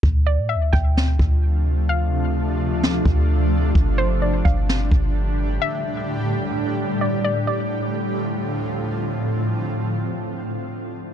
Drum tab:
SD |----o---|----o---|----o---|--------|
BD |o--o-o--|-----o--|o--o-o--|--------|

SD |--------|--------|
BD |--------|--------|